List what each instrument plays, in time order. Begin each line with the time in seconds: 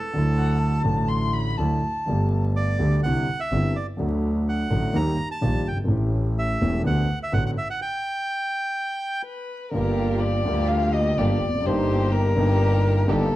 Already playing: bandoneon A4
0.13 double bass D2, grand piano D2 D3 F#3 A3 E4
0.38 violin F#5
0.62 violin A5
0.84 grand piano A1 A2 D3 F#3 A3, double bass A1
0.88 grand piano E4
1.08 violin C6
1.33 violin B5
1.57 grand piano D2 D3 F#3 A3 E4, double bass D2, violin A5
2.06 double bass G1, grand piano G1 G2 D3 G3 A3 G4
2.56 bandoneon D5
2.79 grand piano D2 D3 G3 A3 G4, double bass D2
3.03 double bass C2, grand piano C2 C3 D3 G3 C4 E4, bandoneon F#5
3.40 bandoneon E5
3.51 double bass G1, grand piano G1 G2 D3 G3 C4 E4
3.76 bandoneon D5
3.97 grand piano D2 D3 F#3 A3 F#4, double bass D2
4.49 bandoneon F#5
4.70 grand piano A1 A2 D3 F#3 A3 F#4, double bass A1
4.93 grand piano D#2 D#3 G3 A#3 G4, double bass D#2, bandoneon A#5
5.31 bandoneon A5
5.41 grand piano A#1 A#2 D#3 G3 A#3 G4, double bass A#1
5.66 double bass G1, bandoneon G5
5.71 grand piano F#1
5.77 grand piano G1
5.84 grand piano G#1 A1 A2 E3 A3
5.88 double bass A1, grand piano C#4 G4
6.39 bandoneon E5
6.61 double bass E1, grand piano E1 E2 E3 A3 C#4 G4
6.84 grand piano D2 D3 A3 B3 F#4, double bass D2, bandoneon F#5
7.23 bandoneon E5
7.32 grand piano A1 A2 D3 A3 B3 F#4, double bass A1, bandoneon F#5
7.46 bandoneon F#5
7.58 bandoneon E5
7.70 bandoneon F#5
7.82 bandoneon G5
9.24 violin B4
9.71 double bass G1, grand piano G1 G2 D3 G3 A#3, string section A#3 F4 G4, violin A#4
9.76 grand piano F4
10.20 violin D5
10.45 grand piano D2 D3 G3 A#3 F4, double bass D2, string section A#3 F4 G4
10.68 violin F5
10.93 violin D#5
11.17 double bass G1, grand piano G1 G2 D3 G3 A#3 F4, string section A#3 F4 G4, violin D5
11.42 double bass F1
11.49 grand piano E2
11.55 grand piano F2
11.60 grand piano F#2 D4
11.65 double bass G1, grand piano G1 G2 G3 A#3, string section D#4 G4, violin C5
11.69 grand piano D#4
12.12 violin A#4
12.35 double bass G1, grand piano G1 G2 G3 A#3 D4, string section D#4 G4
12.39 grand piano D#4
13.07 double bass G1, grand piano G1 G2 D3 G3 A#3 D#4, string section D4 D#4 G4, violin A4